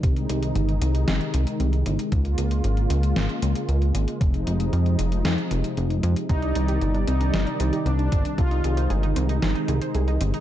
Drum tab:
HH |xxxxxxxxxxxxxxxx|xxxxxxxxxxxxxxxx|xxxxxxxxxxxxxxxx|xxxxxxxxxxxxxxxx|
SD |--------o-------|--------o-------|--------o-------|--------o-------|
BD |o---------------|o---------------|o---------------|o-------------o-|

HH |xxxxxxxxxxxxxxxx|
SD |--------o-------|
BD |o---------------|